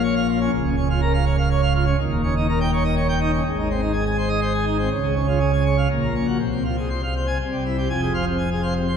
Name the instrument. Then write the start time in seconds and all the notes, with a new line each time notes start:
pipe organ
Already playing: A#1 A#2
0.03 C#5
0.16 F5
0.28 F4
0.41 C#4
0.52 C#1 C#2
0.64 C#3
0.77 C#4
0.90 F4
1.02 A#4
1.14 F5
1.25 C#5
1.38 F5
1.50 C#5
1.62 F5
1.74 F4
1.86 C#4
1.98 D#1 D#2
2.11 A#2
2.24 C#4
2.37 D#4
2.49 A#4
2.61 G5
2.73 C#5
2.84 D#5
2.97 C#5
3.09 G5
3.21 D#4
3.33 C#4
3.46 G#1 G#2
3.58 D#3
3.71 C4
3.81 D#4
3.93 G#4
4.06 G#5
4.18 C5
4.29 D#5
4.41 C5
4.54 G#5
4.66 D#4
4.78 C4
4.91 C#2 C#3
5.03 G#3
5.16 C#4
5.28 F4
5.40 G#4
5.52 G#5
5.66 C#5
5.78 F5
5.90 A#1 A#2
6.03 A#3
6.15 C#4
6.27 F#4
6.39 C2 C3
6.52 C4
6.65 F4
6.77 G#4
6.90 C5
7.03 F5
7.16 C5
7.27 G#5
7.40 C2 C3
7.52 G3
7.66 E4
7.78 G4
7.89 F1 F2 G#5
8.01 G#4
8.14 C5 F5
8.26 C3
8.38 G#5
8.51 G#4
8.63 C5 F5
8.76 C3
8.88 C5